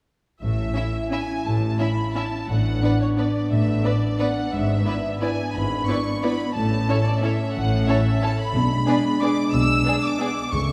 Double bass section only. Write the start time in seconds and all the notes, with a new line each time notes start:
0.41 A1
1.46 A1
2.48 A1
3.50 A1
4.52 G#1
5.54 G#1
6.56 A1
7.55 A1
8.54 B1
9.53 B1
10.53 C#2